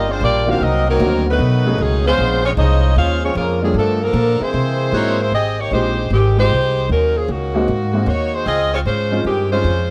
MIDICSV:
0, 0, Header, 1, 6, 480
1, 0, Start_track
1, 0, Key_signature, -4, "minor"
1, 0, Tempo, 393185
1, 737, Time_signature, 4, 2, 24, 8
1, 12092, End_track
2, 0, Start_track
2, 0, Title_t, "Saxophone section"
2, 0, Program_c, 0, 65
2, 134, Note_on_c, 0, 72, 90
2, 136, Note_on_c, 0, 56, 80
2, 137, Note_on_c, 0, 62, 80
2, 137, Note_on_c, 0, 65, 77
2, 276, Note_off_c, 0, 72, 0
2, 277, Note_off_c, 0, 56, 0
2, 277, Note_off_c, 0, 65, 0
2, 278, Note_off_c, 0, 62, 0
2, 296, Note_on_c, 0, 65, 91
2, 296, Note_on_c, 0, 74, 103
2, 297, Note_on_c, 0, 67, 84
2, 298, Note_on_c, 0, 58, 89
2, 575, Note_off_c, 0, 74, 0
2, 576, Note_off_c, 0, 65, 0
2, 576, Note_off_c, 0, 67, 0
2, 577, Note_off_c, 0, 58, 0
2, 623, Note_on_c, 0, 77, 91
2, 625, Note_on_c, 0, 67, 83
2, 627, Note_on_c, 0, 70, 79
2, 628, Note_on_c, 0, 62, 77
2, 761, Note_off_c, 0, 77, 0
2, 762, Note_off_c, 0, 67, 0
2, 763, Note_off_c, 0, 62, 0
2, 763, Note_off_c, 0, 70, 0
2, 773, Note_on_c, 0, 66, 87
2, 776, Note_on_c, 0, 60, 82
2, 776, Note_on_c, 0, 75, 97
2, 777, Note_on_c, 0, 70, 91
2, 1075, Note_off_c, 0, 66, 0
2, 1077, Note_off_c, 0, 60, 0
2, 1077, Note_off_c, 0, 75, 0
2, 1078, Note_off_c, 0, 70, 0
2, 1096, Note_on_c, 0, 60, 92
2, 1096, Note_on_c, 0, 63, 76
2, 1097, Note_on_c, 0, 54, 86
2, 1097, Note_on_c, 0, 70, 93
2, 1525, Note_off_c, 0, 54, 0
2, 1525, Note_off_c, 0, 60, 0
2, 1525, Note_off_c, 0, 63, 0
2, 1526, Note_off_c, 0, 70, 0
2, 1591, Note_on_c, 0, 57, 86
2, 1591, Note_on_c, 0, 66, 88
2, 1596, Note_on_c, 0, 71, 110
2, 1598, Note_on_c, 0, 63, 83
2, 2195, Note_off_c, 0, 63, 0
2, 2205, Note_off_c, 0, 57, 0
2, 2205, Note_off_c, 0, 66, 0
2, 2206, Note_on_c, 0, 54, 73
2, 2207, Note_on_c, 0, 61, 79
2, 2208, Note_off_c, 0, 71, 0
2, 2210, Note_on_c, 0, 63, 80
2, 2213, Note_on_c, 0, 68, 84
2, 2513, Note_off_c, 0, 54, 0
2, 2513, Note_off_c, 0, 61, 0
2, 2514, Note_off_c, 0, 63, 0
2, 2516, Note_off_c, 0, 68, 0
2, 2531, Note_on_c, 0, 72, 107
2, 2532, Note_on_c, 0, 65, 92
2, 2535, Note_on_c, 0, 61, 85
2, 2536, Note_on_c, 0, 56, 84
2, 2963, Note_off_c, 0, 65, 0
2, 2963, Note_off_c, 0, 72, 0
2, 2965, Note_off_c, 0, 56, 0
2, 2965, Note_off_c, 0, 61, 0
2, 2992, Note_on_c, 0, 65, 82
2, 2995, Note_on_c, 0, 60, 74
2, 2995, Note_on_c, 0, 73, 88
2, 2997, Note_on_c, 0, 56, 84
2, 3061, Note_off_c, 0, 65, 0
2, 3064, Note_off_c, 0, 60, 0
2, 3064, Note_off_c, 0, 73, 0
2, 3065, Note_off_c, 0, 56, 0
2, 3156, Note_on_c, 0, 72, 81
2, 3158, Note_on_c, 0, 68, 76
2, 3161, Note_on_c, 0, 61, 81
2, 3161, Note_on_c, 0, 75, 96
2, 3595, Note_off_c, 0, 72, 0
2, 3596, Note_off_c, 0, 68, 0
2, 3597, Note_off_c, 0, 61, 0
2, 3597, Note_off_c, 0, 75, 0
2, 3630, Note_on_c, 0, 61, 88
2, 3631, Note_on_c, 0, 68, 82
2, 3631, Note_on_c, 0, 77, 101
2, 3633, Note_on_c, 0, 72, 81
2, 3922, Note_off_c, 0, 61, 0
2, 3923, Note_off_c, 0, 68, 0
2, 3923, Note_off_c, 0, 77, 0
2, 3924, Note_off_c, 0, 72, 0
2, 3963, Note_on_c, 0, 60, 81
2, 3965, Note_on_c, 0, 73, 83
2, 3966, Note_on_c, 0, 65, 73
2, 3967, Note_on_c, 0, 56, 76
2, 4100, Note_off_c, 0, 56, 0
2, 4101, Note_off_c, 0, 60, 0
2, 4102, Note_off_c, 0, 73, 0
2, 4103, Note_off_c, 0, 65, 0
2, 4114, Note_on_c, 0, 56, 78
2, 4117, Note_on_c, 0, 70, 82
2, 4118, Note_on_c, 0, 65, 71
2, 4119, Note_on_c, 0, 61, 77
2, 4405, Note_off_c, 0, 56, 0
2, 4406, Note_off_c, 0, 70, 0
2, 4407, Note_off_c, 0, 65, 0
2, 4408, Note_off_c, 0, 61, 0
2, 4440, Note_on_c, 0, 61, 73
2, 4441, Note_on_c, 0, 53, 59
2, 4444, Note_on_c, 0, 68, 74
2, 4445, Note_on_c, 0, 60, 73
2, 4579, Note_off_c, 0, 61, 0
2, 4580, Note_off_c, 0, 53, 0
2, 4582, Note_off_c, 0, 60, 0
2, 4582, Note_off_c, 0, 68, 0
2, 4611, Note_on_c, 0, 53, 72
2, 4614, Note_on_c, 0, 58, 74
2, 4614, Note_on_c, 0, 62, 80
2, 4614, Note_on_c, 0, 69, 86
2, 4894, Note_off_c, 0, 53, 0
2, 4896, Note_off_c, 0, 58, 0
2, 4896, Note_off_c, 0, 62, 0
2, 4896, Note_off_c, 0, 69, 0
2, 4929, Note_on_c, 0, 62, 78
2, 4929, Note_on_c, 0, 70, 95
2, 4931, Note_on_c, 0, 53, 83
2, 4935, Note_on_c, 0, 69, 78
2, 5394, Note_off_c, 0, 62, 0
2, 5394, Note_off_c, 0, 70, 0
2, 5395, Note_off_c, 0, 53, 0
2, 5397, Note_off_c, 0, 69, 0
2, 5398, Note_on_c, 0, 64, 74
2, 5400, Note_on_c, 0, 72, 86
2, 5401, Note_on_c, 0, 58, 81
2, 5403, Note_on_c, 0, 68, 74
2, 6026, Note_off_c, 0, 58, 0
2, 6033, Note_on_c, 0, 63, 78
2, 6035, Note_on_c, 0, 66, 80
2, 6036, Note_on_c, 0, 73, 101
2, 6041, Note_on_c, 0, 58, 81
2, 6324, Note_off_c, 0, 63, 0
2, 6325, Note_off_c, 0, 66, 0
2, 6326, Note_off_c, 0, 73, 0
2, 6329, Note_off_c, 0, 58, 0
2, 6339, Note_off_c, 0, 64, 0
2, 6339, Note_off_c, 0, 68, 0
2, 6340, Note_off_c, 0, 72, 0
2, 6354, Note_on_c, 0, 64, 85
2, 6354, Note_on_c, 0, 68, 75
2, 6355, Note_on_c, 0, 72, 90
2, 6356, Note_on_c, 0, 58, 78
2, 6504, Note_off_c, 0, 68, 0
2, 6507, Note_off_c, 0, 64, 0
2, 6507, Note_off_c, 0, 72, 0
2, 6508, Note_off_c, 0, 58, 0
2, 6518, Note_on_c, 0, 68, 89
2, 6520, Note_on_c, 0, 67, 82
2, 6524, Note_on_c, 0, 75, 99
2, 6526, Note_on_c, 0, 60, 76
2, 6807, Note_off_c, 0, 68, 0
2, 6808, Note_off_c, 0, 67, 0
2, 6810, Note_off_c, 0, 75, 0
2, 6811, Note_off_c, 0, 60, 0
2, 6839, Note_on_c, 0, 58, 75
2, 6839, Note_on_c, 0, 67, 77
2, 6842, Note_on_c, 0, 73, 97
2, 6843, Note_on_c, 0, 63, 75
2, 6982, Note_off_c, 0, 67, 0
2, 6984, Note_off_c, 0, 63, 0
2, 6990, Note_off_c, 0, 58, 0
2, 6991, Note_off_c, 0, 73, 0
2, 6997, Note_on_c, 0, 67, 72
2, 6999, Note_on_c, 0, 63, 73
2, 7000, Note_on_c, 0, 72, 92
2, 7001, Note_on_c, 0, 56, 77
2, 7436, Note_off_c, 0, 63, 0
2, 7436, Note_off_c, 0, 67, 0
2, 7437, Note_off_c, 0, 72, 0
2, 7438, Note_off_c, 0, 56, 0
2, 7479, Note_on_c, 0, 60, 71
2, 7482, Note_on_c, 0, 67, 94
2, 7483, Note_on_c, 0, 56, 73
2, 7487, Note_on_c, 0, 51, 76
2, 7767, Note_off_c, 0, 60, 0
2, 7769, Note_off_c, 0, 67, 0
2, 7770, Note_off_c, 0, 56, 0
2, 7771, Note_off_c, 0, 51, 0
2, 7801, Note_on_c, 0, 56, 85
2, 7801, Note_on_c, 0, 72, 104
2, 7803, Note_on_c, 0, 63, 86
2, 7806, Note_on_c, 0, 67, 95
2, 8386, Note_off_c, 0, 72, 0
2, 8387, Note_off_c, 0, 56, 0
2, 8388, Note_off_c, 0, 63, 0
2, 8389, Note_off_c, 0, 67, 0
2, 8445, Note_on_c, 0, 54, 86
2, 8445, Note_on_c, 0, 63, 78
2, 8447, Note_on_c, 0, 70, 88
2, 8448, Note_on_c, 0, 61, 78
2, 8740, Note_off_c, 0, 61, 0
2, 8747, Note_on_c, 0, 68, 77
2, 8750, Note_on_c, 0, 58, 73
2, 8752, Note_off_c, 0, 54, 0
2, 8752, Note_off_c, 0, 63, 0
2, 8753, Note_off_c, 0, 70, 0
2, 8753, Note_on_c, 0, 53, 80
2, 8755, Note_on_c, 0, 61, 71
2, 8904, Note_off_c, 0, 68, 0
2, 8905, Note_off_c, 0, 58, 0
2, 8906, Note_off_c, 0, 53, 0
2, 8907, Note_off_c, 0, 61, 0
2, 8920, Note_on_c, 0, 58, 73
2, 8921, Note_on_c, 0, 61, 73
2, 8922, Note_on_c, 0, 51, 70
2, 8923, Note_on_c, 0, 66, 76
2, 9390, Note_off_c, 0, 61, 0
2, 9845, Note_off_c, 0, 58, 0
2, 9853, Note_off_c, 0, 66, 0
2, 9859, Note_on_c, 0, 58, 76
2, 9864, Note_on_c, 0, 73, 84
2, 9866, Note_on_c, 0, 63, 81
2, 9867, Note_on_c, 0, 66, 86
2, 9871, Note_off_c, 0, 51, 0
2, 10170, Note_off_c, 0, 63, 0
2, 10170, Note_off_c, 0, 66, 0
2, 10179, Note_off_c, 0, 58, 0
2, 10181, Note_off_c, 0, 73, 0
2, 10183, Note_on_c, 0, 72, 87
2, 10184, Note_on_c, 0, 66, 76
2, 10185, Note_on_c, 0, 63, 72
2, 10187, Note_on_c, 0, 56, 77
2, 10332, Note_on_c, 0, 60, 88
2, 10333, Note_on_c, 0, 68, 91
2, 10335, Note_on_c, 0, 65, 84
2, 10337, Note_on_c, 0, 75, 107
2, 10341, Note_off_c, 0, 72, 0
2, 10342, Note_off_c, 0, 63, 0
2, 10342, Note_off_c, 0, 66, 0
2, 10343, Note_off_c, 0, 56, 0
2, 10633, Note_off_c, 0, 60, 0
2, 10633, Note_off_c, 0, 68, 0
2, 10634, Note_off_c, 0, 65, 0
2, 10635, Note_off_c, 0, 75, 0
2, 10665, Note_on_c, 0, 60, 86
2, 10670, Note_on_c, 0, 65, 86
2, 10671, Note_on_c, 0, 73, 84
2, 10672, Note_on_c, 0, 56, 79
2, 10736, Note_off_c, 0, 60, 0
2, 10740, Note_off_c, 0, 65, 0
2, 10740, Note_off_c, 0, 73, 0
2, 10741, Note_off_c, 0, 56, 0
2, 10824, Note_on_c, 0, 61, 77
2, 10826, Note_on_c, 0, 56, 77
2, 10826, Note_on_c, 0, 65, 74
2, 10827, Note_on_c, 0, 72, 93
2, 11267, Note_off_c, 0, 61, 0
2, 11268, Note_off_c, 0, 56, 0
2, 11268, Note_off_c, 0, 65, 0
2, 11269, Note_off_c, 0, 72, 0
2, 11304, Note_on_c, 0, 51, 72
2, 11309, Note_on_c, 0, 56, 81
2, 11309, Note_on_c, 0, 60, 70
2, 11312, Note_on_c, 0, 67, 84
2, 11598, Note_off_c, 0, 51, 0
2, 11601, Note_off_c, 0, 56, 0
2, 11601, Note_off_c, 0, 60, 0
2, 11602, Note_off_c, 0, 67, 0
2, 11620, Note_on_c, 0, 65, 87
2, 11621, Note_on_c, 0, 56, 85
2, 11624, Note_on_c, 0, 61, 92
2, 11627, Note_on_c, 0, 72, 97
2, 12087, Note_off_c, 0, 56, 0
2, 12087, Note_off_c, 0, 65, 0
2, 12088, Note_off_c, 0, 61, 0
2, 12088, Note_off_c, 0, 72, 0
2, 12092, End_track
3, 0, Start_track
3, 0, Title_t, "Grand piano"
3, 0, Program_c, 1, 0
3, 575, Note_on_c, 1, 51, 60
3, 576, Note_on_c, 1, 58, 60
3, 588, Note_on_c, 1, 60, 60
3, 589, Note_on_c, 1, 66, 78
3, 592, Note_on_c, 1, 62, 54
3, 721, Note_off_c, 1, 51, 0
3, 721, Note_off_c, 1, 58, 0
3, 727, Note_off_c, 1, 60, 0
3, 728, Note_off_c, 1, 66, 0
3, 729, Note_off_c, 1, 62, 0
3, 1218, Note_on_c, 1, 51, 58
3, 1225, Note_on_c, 1, 58, 53
3, 1227, Note_on_c, 1, 60, 57
3, 1232, Note_on_c, 1, 62, 51
3, 1234, Note_on_c, 1, 66, 74
3, 1506, Note_off_c, 1, 51, 0
3, 1510, Note_off_c, 1, 58, 0
3, 1511, Note_off_c, 1, 60, 0
3, 1513, Note_off_c, 1, 62, 0
3, 1514, Note_off_c, 1, 66, 0
3, 2021, Note_on_c, 1, 54, 57
3, 2023, Note_on_c, 1, 57, 63
3, 2027, Note_on_c, 1, 61, 59
3, 2034, Note_on_c, 1, 63, 53
3, 2039, Note_on_c, 1, 68, 65
3, 2164, Note_off_c, 1, 54, 0
3, 2165, Note_off_c, 1, 57, 0
3, 2167, Note_off_c, 1, 61, 0
3, 2171, Note_off_c, 1, 63, 0
3, 2173, Note_off_c, 1, 68, 0
3, 4419, Note_on_c, 1, 55, 52
3, 4424, Note_on_c, 1, 58, 56
3, 4426, Note_on_c, 1, 62, 55
3, 4431, Note_on_c, 1, 65, 50
3, 4439, Note_on_c, 1, 69, 63
3, 4563, Note_off_c, 1, 55, 0
3, 4566, Note_off_c, 1, 58, 0
3, 4567, Note_off_c, 1, 62, 0
3, 4570, Note_off_c, 1, 65, 0
3, 4574, Note_off_c, 1, 69, 0
3, 6010, Note_on_c, 1, 58, 52
3, 6015, Note_on_c, 1, 64, 53
3, 6016, Note_on_c, 1, 60, 56
3, 6018, Note_on_c, 1, 63, 49
3, 6022, Note_on_c, 1, 68, 53
3, 6303, Note_off_c, 1, 58, 0
3, 6305, Note_off_c, 1, 64, 0
3, 6306, Note_off_c, 1, 60, 0
3, 6307, Note_off_c, 1, 63, 0
3, 6309, Note_off_c, 1, 68, 0
3, 6977, Note_on_c, 1, 56, 49
3, 6986, Note_on_c, 1, 60, 45
3, 6988, Note_on_c, 1, 63, 45
3, 6991, Note_on_c, 1, 65, 46
3, 6995, Note_on_c, 1, 67, 55
3, 7266, Note_off_c, 1, 56, 0
3, 7271, Note_off_c, 1, 60, 0
3, 7272, Note_off_c, 1, 63, 0
3, 7273, Note_off_c, 1, 65, 0
3, 7275, Note_off_c, 1, 67, 0
3, 7783, Note_on_c, 1, 56, 50
3, 7791, Note_on_c, 1, 60, 55
3, 7791, Note_on_c, 1, 63, 45
3, 7801, Note_on_c, 1, 65, 49
3, 7802, Note_on_c, 1, 67, 59
3, 7925, Note_off_c, 1, 56, 0
3, 7929, Note_off_c, 1, 60, 0
3, 7929, Note_off_c, 1, 63, 0
3, 7934, Note_off_c, 1, 65, 0
3, 7935, Note_off_c, 1, 67, 0
3, 9207, Note_on_c, 1, 56, 71
3, 9210, Note_on_c, 1, 58, 63
3, 9212, Note_on_c, 1, 60, 58
3, 9221, Note_on_c, 1, 63, 55
3, 9225, Note_on_c, 1, 66, 78
3, 9357, Note_off_c, 1, 56, 0
3, 9359, Note_off_c, 1, 58, 0
3, 9360, Note_off_c, 1, 60, 0
3, 9364, Note_off_c, 1, 63, 0
3, 9366, Note_off_c, 1, 66, 0
3, 9681, Note_on_c, 1, 56, 58
3, 9688, Note_on_c, 1, 58, 58
3, 9694, Note_on_c, 1, 60, 52
3, 9700, Note_on_c, 1, 63, 55
3, 9706, Note_on_c, 1, 66, 63
3, 9834, Note_off_c, 1, 56, 0
3, 9838, Note_off_c, 1, 58, 0
3, 9840, Note_off_c, 1, 60, 0
3, 9844, Note_off_c, 1, 63, 0
3, 9846, Note_off_c, 1, 66, 0
3, 11130, Note_on_c, 1, 60, 54
3, 11131, Note_on_c, 1, 56, 62
3, 11136, Note_on_c, 1, 61, 54
3, 11137, Note_on_c, 1, 63, 52
3, 11145, Note_on_c, 1, 65, 65
3, 11278, Note_off_c, 1, 56, 0
3, 11278, Note_off_c, 1, 60, 0
3, 11281, Note_off_c, 1, 61, 0
3, 11282, Note_off_c, 1, 63, 0
3, 11285, Note_off_c, 1, 65, 0
3, 11621, Note_on_c, 1, 56, 53
3, 11622, Note_on_c, 1, 60, 48
3, 11622, Note_on_c, 1, 61, 47
3, 11626, Note_on_c, 1, 65, 58
3, 11628, Note_on_c, 1, 63, 47
3, 11763, Note_off_c, 1, 56, 0
3, 11764, Note_off_c, 1, 60, 0
3, 11764, Note_off_c, 1, 61, 0
3, 11766, Note_off_c, 1, 65, 0
3, 11767, Note_off_c, 1, 63, 0
3, 12092, End_track
4, 0, Start_track
4, 0, Title_t, "Trombone section"
4, 0, Program_c, 2, 61
4, 111, Note_on_c, 2, 60, 84
4, 256, Note_on_c, 2, 62, 81
4, 264, Note_off_c, 2, 60, 0
4, 264, Note_on_c, 2, 58, 74
4, 265, Note_on_c, 2, 55, 79
4, 555, Note_off_c, 2, 62, 0
4, 559, Note_off_c, 2, 55, 0
4, 559, Note_off_c, 2, 58, 0
4, 585, Note_on_c, 2, 62, 75
4, 590, Note_on_c, 2, 58, 69
4, 590, Note_on_c, 2, 65, 83
4, 727, Note_off_c, 2, 58, 0
4, 741, Note_off_c, 2, 62, 0
4, 741, Note_on_c, 2, 63, 88
4, 742, Note_on_c, 2, 58, 92
4, 744, Note_off_c, 2, 65, 0
4, 744, Note_on_c, 2, 54, 94
4, 1052, Note_off_c, 2, 54, 0
4, 1057, Note_off_c, 2, 58, 0
4, 1060, Note_off_c, 2, 63, 0
4, 1066, Note_on_c, 2, 51, 84
4, 1067, Note_on_c, 2, 54, 93
4, 1071, Note_on_c, 2, 58, 88
4, 1509, Note_off_c, 2, 51, 0
4, 1509, Note_off_c, 2, 54, 0
4, 1512, Note_off_c, 2, 58, 0
4, 1545, Note_on_c, 2, 51, 80
4, 1547, Note_on_c, 2, 54, 81
4, 1548, Note_on_c, 2, 59, 83
4, 2173, Note_off_c, 2, 51, 0
4, 2182, Note_on_c, 2, 45, 85
4, 2184, Note_off_c, 2, 54, 0
4, 2184, Note_off_c, 2, 59, 0
4, 2187, Note_on_c, 2, 51, 81
4, 2187, Note_on_c, 2, 56, 72
4, 2482, Note_off_c, 2, 56, 0
4, 2492, Note_on_c, 2, 59, 78
4, 2496, Note_on_c, 2, 56, 87
4, 2500, Note_off_c, 2, 45, 0
4, 2500, Note_on_c, 2, 53, 80
4, 2503, Note_off_c, 2, 51, 0
4, 2942, Note_off_c, 2, 59, 0
4, 2944, Note_off_c, 2, 56, 0
4, 2946, Note_off_c, 2, 53, 0
4, 2971, Note_on_c, 2, 53, 77
4, 2974, Note_on_c, 2, 56, 77
4, 2975, Note_on_c, 2, 61, 79
4, 3045, Note_off_c, 2, 53, 0
4, 3047, Note_off_c, 2, 56, 0
4, 3048, Note_off_c, 2, 61, 0
4, 3126, Note_on_c, 2, 56, 90
4, 3128, Note_on_c, 2, 63, 84
4, 3129, Note_on_c, 2, 53, 94
4, 3579, Note_off_c, 2, 56, 0
4, 3580, Note_off_c, 2, 63, 0
4, 3581, Note_off_c, 2, 53, 0
4, 3611, Note_on_c, 2, 56, 85
4, 3613, Note_on_c, 2, 65, 85
4, 3617, Note_on_c, 2, 61, 88
4, 3913, Note_off_c, 2, 56, 0
4, 3914, Note_off_c, 2, 65, 0
4, 3916, Note_off_c, 2, 61, 0
4, 3941, Note_on_c, 2, 56, 84
4, 3941, Note_on_c, 2, 61, 81
4, 3948, Note_on_c, 2, 53, 86
4, 4089, Note_off_c, 2, 61, 0
4, 4090, Note_off_c, 2, 53, 0
4, 4090, Note_off_c, 2, 56, 0
4, 4104, Note_on_c, 2, 53, 74
4, 4107, Note_on_c, 2, 49, 73
4, 4109, Note_on_c, 2, 58, 79
4, 4400, Note_off_c, 2, 53, 0
4, 4401, Note_off_c, 2, 49, 0
4, 4402, Note_off_c, 2, 58, 0
4, 4417, Note_on_c, 2, 49, 69
4, 4419, Note_on_c, 2, 53, 62
4, 4420, Note_on_c, 2, 56, 61
4, 4567, Note_off_c, 2, 49, 0
4, 4568, Note_off_c, 2, 53, 0
4, 4569, Note_off_c, 2, 56, 0
4, 4583, Note_on_c, 2, 57, 83
4, 4586, Note_on_c, 2, 50, 78
4, 4586, Note_on_c, 2, 53, 74
4, 4879, Note_off_c, 2, 57, 0
4, 4880, Note_off_c, 2, 53, 0
4, 4881, Note_off_c, 2, 50, 0
4, 4910, Note_on_c, 2, 50, 89
4, 4911, Note_on_c, 2, 53, 83
4, 4911, Note_on_c, 2, 58, 73
4, 5385, Note_off_c, 2, 50, 0
4, 5385, Note_off_c, 2, 53, 0
4, 5385, Note_off_c, 2, 58, 0
4, 5390, Note_on_c, 2, 60, 61
4, 5391, Note_on_c, 2, 56, 74
4, 5392, Note_on_c, 2, 52, 67
4, 6345, Note_off_c, 2, 56, 0
4, 6345, Note_off_c, 2, 60, 0
4, 6346, Note_off_c, 2, 52, 0
4, 12092, End_track
5, 0, Start_track
5, 0, Title_t, "Upright bass"
5, 0, Program_c, 3, 32
5, 0, Note_on_c, 3, 31, 93
5, 238, Note_off_c, 3, 31, 0
5, 251, Note_on_c, 3, 34, 84
5, 720, Note_off_c, 3, 34, 0
5, 739, Note_on_c, 3, 36, 83
5, 1204, Note_off_c, 3, 36, 0
5, 1216, Note_on_c, 3, 38, 98
5, 1683, Note_off_c, 3, 38, 0
5, 1692, Note_on_c, 3, 35, 94
5, 2161, Note_off_c, 3, 35, 0
5, 2174, Note_on_c, 3, 37, 84
5, 2642, Note_off_c, 3, 37, 0
5, 2660, Note_on_c, 3, 34, 91
5, 3126, Note_off_c, 3, 34, 0
5, 3138, Note_on_c, 3, 36, 97
5, 3604, Note_off_c, 3, 36, 0
5, 3614, Note_on_c, 3, 39, 93
5, 4082, Note_off_c, 3, 39, 0
5, 4092, Note_on_c, 3, 41, 96
5, 4558, Note_off_c, 3, 41, 0
5, 4565, Note_on_c, 3, 43, 84
5, 5038, Note_off_c, 3, 43, 0
5, 5046, Note_on_c, 3, 46, 98
5, 5350, Note_off_c, 3, 46, 0
5, 5537, Note_on_c, 3, 48, 89
5, 5998, Note_off_c, 3, 48, 0
5, 6005, Note_on_c, 3, 44, 85
5, 6478, Note_off_c, 3, 44, 0
5, 6487, Note_on_c, 3, 32, 75
5, 6959, Note_off_c, 3, 32, 0
5, 6973, Note_on_c, 3, 34, 80
5, 7442, Note_off_c, 3, 34, 0
5, 7452, Note_on_c, 3, 32, 88
5, 7921, Note_off_c, 3, 32, 0
5, 7928, Note_on_c, 3, 36, 86
5, 8399, Note_off_c, 3, 36, 0
5, 8415, Note_on_c, 3, 39, 82
5, 8883, Note_off_c, 3, 39, 0
5, 8891, Note_on_c, 3, 37, 82
5, 9361, Note_off_c, 3, 37, 0
5, 9374, Note_on_c, 3, 44, 88
5, 9835, Note_off_c, 3, 44, 0
5, 9842, Note_on_c, 3, 39, 92
5, 10316, Note_off_c, 3, 39, 0
5, 10327, Note_on_c, 3, 37, 80
5, 10798, Note_off_c, 3, 37, 0
5, 10809, Note_on_c, 3, 44, 83
5, 11279, Note_off_c, 3, 44, 0
5, 11287, Note_on_c, 3, 43, 85
5, 11757, Note_off_c, 3, 43, 0
5, 11769, Note_on_c, 3, 41, 88
5, 12092, Note_off_c, 3, 41, 0
5, 12092, End_track
6, 0, Start_track
6, 0, Title_t, "Muted upright bass strokes"
6, 5379, Note_on_c, 9, 29, 43
6, 5501, Note_off_c, 9, 29, 0
6, 12092, End_track
0, 0, End_of_file